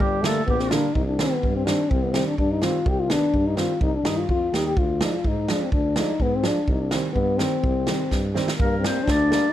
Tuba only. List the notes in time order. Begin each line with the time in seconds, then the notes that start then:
0.01 G1
0.48 A#1
0.95 C2
1.44 G2
1.91 C2
2.38 G2
2.86 C2
3.34 G2
3.80 C2
4.03 G2
4.29 F2
4.53 D#2
4.77 D2
5.24 G#2
5.73 D2
6.20 G#2
6.68 C2
7.15 G2
7.63 C2
8.11 G2
8.60 G2
9.08 D2